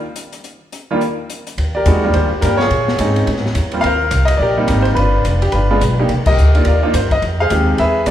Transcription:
0.16 closed hi-hat
0.33 closed hi-hat
0.44 closed hi-hat
0.72 closed hi-hat
0.91 grand piano D#3 G3 A#3 D4 F4
1.01 closed hi-hat
1.30 closed hi-hat
1.47 closed hi-hat
1.58 upright bass D#2, kick, ride
1.75 grand piano G4 A#4 D5
1.86 upright bass E2, grand piano G#3 B3 D#4 F#4, kick, hi-hat pedal, ride
2.04 grand piano G3 A#3 D4 F4
2.14 upright bass D#2, grand piano G4 C5, kick, ride
2.32 muted upright bass stroke
2.41 upright bass G2, grand piano G3 A#3 D4 G4 A#4, kick, hi-hat pedal, ride
2.57 grand piano C#5, snare
2.62 grand piano F4 G#4
2.70 upright bass A#2, kick, ride
2.88 snare
2.98 upright bass G#2, grand piano G#3 C4 C#4 D#4, kick, hi-hat pedal, ride
3.16 ride
3.27 upright bass A2, kick, ride
3.36 snare
3.46 snare
3.55 upright bass E2, kick, hi-hat pedal, ride
3.71 grand piano G3 A#3 C4 F4, ride
3.81 upright bass D#2, grand piano F5, kick, ride
3.86 grand piano A#4 C5
4.11 upright bass C2, kick, hi-hat pedal, ride
4.25 grand piano D#5, ride
4.37 upright bass A#1, grand piano D5, kick
4.42 grand piano G4 A#4
4.57 grand piano G3 A#3 C4 D#4
4.68 upright bass G#1, kick, hi-hat pedal, ride
4.82 grand piano C5, ride
4.95 upright bass G1, grand piano D4 F4 B4, kick, ride
5.25 upright bass F1, kick, hi-hat pedal, ride
5.42 grand piano G4, ride
5.52 upright bass G1, grand piano D4 F4 B4, kick, ride
5.71 grand piano G#3 B3 D4 F4
5.81 upright bass B1, kick, hi-hat pedal, ride
5.99 grand piano A#3 D4 D#4 G4
6.09 upright bass C2, kick, ride
6.26 grand piano G4 A#4 D#5, kick, crash
6.37 upright bass D2, hi-hat pedal
6.55 grand piano A#3 D4 D#4 F4, ride
6.65 upright bass D#2, grand piano F4 A#4 D5, kick, ride
6.83 grand piano A#3 D4 D#4 F4
6.94 upright bass G2, grand piano C5, kick, hi-hat pedal, ride
7.11 grand piano D#5, kick, ride
7.22 upright bass F2, kick, ride
7.40 grand piano G#4 C5 F5
7.50 upright bass D#2, grand piano G#3 C4 D#4 G4, kick, hi-hat pedal, ride
7.78 upright bass E2, grand piano G#4 B4 E5, kick, ride
8.06 upright bass B1, grand piano G#3 C#4 D4 F#4 D5, kick, hi-hat pedal, ride

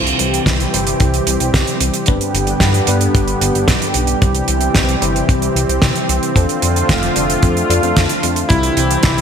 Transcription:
Already playing: analog synth bass C2, tine electric piano C3 C4 E4 G4 C5, analog synth pad E3 G3 C4 G4
0.07 closed hi-hat
0.19 analog synth bass C2, closed hi-hat
0.34 closed hi-hat
0.46 analog synth bass C2, kick, snare, closed hi-hat
0.60 closed hi-hat
0.73 analog synth bass G1, tine electric piano C3 C4 E4 G4 C5, closed hi-hat
0.87 closed hi-hat
1.00 analog synth bass C2, kick, closed hi-hat
1.14 closed hi-hat
1.27 analog synth bass C2, closed hi-hat
1.40 analog synth bass C2, closed hi-hat
1.54 analog synth bass C2, kick, snare, closed hi-hat
1.67 closed hi-hat
1.80 analog synth bass C2, closed hi-hat
1.94 closed hi-hat
2.06 analog synth bass G1, tine electric piano G2 B3 D4 G4 B4, analog synth pad D3 B3 G4, kick, closed hi-hat
2.21 closed hi-hat
2.34 analog synth bass G1, closed hi-hat
2.47 closed hi-hat
2.60 analog synth bass G2, kick, snare, closed hi-hat
2.74 closed hi-hat
2.87 analog synth bass G2, tine electric piano G2 B3 D4 G4 B4, closed hi-hat
3.01 closed hi-hat
3.15 analog synth bass G1, kick, closed hi-hat
3.28 closed hi-hat
3.41 analog synth bass G1, closed hi-hat
3.55 analog synth bass G1, closed hi-hat
3.68 analog synth bass B1, kick, snare, closed hi-hat
3.82 closed hi-hat
3.94 analog synth bass B1, closed hi-hat
4.07 closed hi-hat
4.22 analog synth bass C2, tine electric piano C3 C4 E4 G4 C5, analog synth pad E3 C4, kick, closed hi-hat
4.35 closed hi-hat
4.48 analog synth bass C2, closed hi-hat
4.61 closed hi-hat
4.75 analog synth bass C2, kick, snare, closed hi-hat
4.89 closed hi-hat
5.02 analog synth bass G1, tine electric piano C3 C4 E4 G4 C5, closed hi-hat
5.16 closed hi-hat
5.29 analog synth bass C2, kick, closed hi-hat
5.42 closed hi-hat
5.56 analog synth bass C2, closed hi-hat
5.69 analog synth bass C2, closed hi-hat
5.82 analog synth bass C2, kick, snare, closed hi-hat
5.96 closed hi-hat
6.09 analog synth bass C2, closed hi-hat
6.23 closed hi-hat
6.36 analog synth bass F2, analog synth pad D3 A3 F4, tine electric piano F3 D4 F4 A4 C5, kick, closed hi-hat
6.49 closed hi-hat
6.62 analog synth bass F2, closed hi-hat
6.76 closed hi-hat
6.89 analog synth bass F1, kick, snare, closed hi-hat
7.03 closed hi-hat
7.16 analog synth bass F1, tine electric piano F3 D4 F4 A4 C5, closed hi-hat
7.30 closed hi-hat
7.43 analog synth bass F2, kick, closed hi-hat
7.57 closed hi-hat
7.70 analog synth bass F2, tine electric piano F3 D4 F4 A4 D5, closed hi-hat
7.83 analog synth bass F2, tine electric piano F3 D4 F4 A4 C5, closed hi-hat
7.96 analog synth bass F2, kick, snare, closed hi-hat
8.09 closed hi-hat
8.23 analog synth bass F2, closed hi-hat
8.36 closed hi-hat
8.49 analog synth bass C2, tine electric piano C3 C4 E4 G4 C5, analog synth pad E3 G3 C4 G4, electric grand piano E4, kick, closed hi-hat
8.63 closed hi-hat
8.77 analog synth bass C2, closed hi-hat
8.91 closed hi-hat
9.03 analog synth bass C2, kick, snare, closed hi-hat
9.18 closed hi-hat

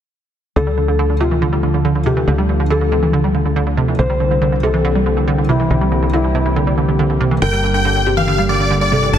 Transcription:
0.56 analog synth bass D2, analog synth pad D3 F3 A3 F4 A4, synth pluck D3, felt piano A4
0.67 synth pluck G3
0.78 synth pluck D3
0.88 synth pluck D3
0.99 synth pluck D3
1.10 synth pluck D3
1.20 synth pluck C3, felt piano F4
1.31 synth pluck E3
1.42 synth pluck D3
1.53 synth pluck G3
1.63 synth pluck D3
1.74 synth pluck D3
1.85 synth pluck D3
1.95 synth pluck D3
2.06 synth pluck C3, felt piano G4
2.17 synth pluck E3
2.28 analog synth bass D2, synth pluck D3
2.38 synth pluck G3
2.49 synth pluck D3
2.60 synth pluck D3
2.70 synth pluck D3, felt piano A4
2.81 synth pluck D3
2.92 synth pluck C3
3.03 synth pluck E3
3.13 synth pluck D3
3.24 synth pluck G3
3.35 synth pluck D3
3.45 synth pluck D3
3.56 synth pluck D3
3.67 synth pluck D3
3.77 synth pluck C3
3.88 synth pluck E3
3.99 analog synth bass C2, synth pluck D3, analog synth pad E3 G3 A#3 C4 G4, felt piano C5
4.10 synth pluck G3
4.20 synth pluck D3
4.31 synth pluck D3
4.42 synth pluck D3
4.52 synth pluck D3
4.63 synth pluck C3, felt piano A4
4.74 synth pluck E3
4.85 synth pluck D3
4.95 synth pluck G3
5.06 synth pluck D3
5.17 synth pluck D3
5.28 synth pluck D3
5.38 synth pluck D3
5.49 synth pluck C3, felt piano E4
5.60 synth pluck E3
5.70 analog synth bass C2, synth pluck D3
5.81 synth pluck G3
5.92 synth pluck D3
6.03 synth pluck D3
6.13 synth pluck D3, felt piano E4
6.24 synth pluck D3
6.35 synth pluck C3
6.46 synth pluck E3
6.56 synth pluck D3
6.67 synth pluck G3
6.78 synth pluck D3
6.88 synth pluck D3
6.99 synth pluck D3
7.10 synth pluck D3
7.21 synth pluck C3
7.31 synth pluck E3
7.42 analog synth bass G1, analog synth pad D3 G4, synth pluck D3, felt piano A#4, supersaw synth G5
7.53 synth pluck G3
7.64 synth pluck D3
7.74 synth pluck D3, supersaw synth G5
7.85 synth pluck D3
7.96 synth pluck D3
8.06 synth pluck C3, felt piano G4
8.17 synth pluck E3, supersaw synth F5
8.28 synth pluck D3
8.38 synth pluck G3
8.49 synth pluck D3, supersaw synth D5
8.60 synth pluck D3
8.71 synth pluck D3
8.81 synth pluck D3, supersaw synth D5
8.92 synth pluck C3, felt piano A4
9.03 synth pluck E3
9.13 analog synth bass G1, synth pluck D3, supersaw synth A5

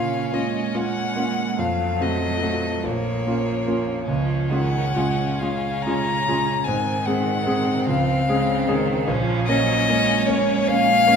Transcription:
Already playing: grand piano A#2 A#3 C#4 F4, cello C#3, violin C#4 F5
0.33 cello G#3, grand piano A#3 C#4 F4, violin D#5
0.75 grand piano A#3 C#4 F4, violin F#5
1.16 grand piano A#3 C#4 F4
1.58 grand piano F2, cello F#3, violin A3 F5
2.00 grand piano A3 C4 F#4, violin D#5
2.42 grand piano A3 C4 F#4
2.84 grand piano A#1, cello F3, violin A#3 C#5
3.26 grand piano A#3 C#4 F4
3.68 grand piano A#3 C#4 F4
4.08 grand piano C#2, cello F3, violin C#4
4.50 cello D#3, grand piano G#3 C#4 F4, violin F#5
4.94 cello C#3, grand piano G#3 C#4 F4
5.40 cello C#3, grand piano G#3 C#4 F4, violin F5
5.83 grand piano G#3 C#4, violin A#5
5.87 grand piano F4
6.28 grand piano G#3 C#4 F4
6.64 grand piano G#2, cello D#3, violin C4 G#5
7.06 grand piano G#3 C4 G#4, violin F#5
7.46 grand piano G#3 C4 G#4
7.87 grand piano C#2, cello F3, violin F5
8.26 cello C#3, grand piano G#3 C#4 G#4
8.68 cello D#3, grand piano G#3 C#4 G#4
9.08 grand piano A#1, cello F3, violin C#4
9.46 cello F#3, grand piano A#3 C#4 C#5, violin D#5
9.89 cello G#3, grand piano A#3 C#4 C#5
10.27 grand piano A#3 C#4 C#5, violin C#5
10.67 grand piano A#3 C#4 C#5, violin F5
11.07 grand piano A#3 C#4 C#5

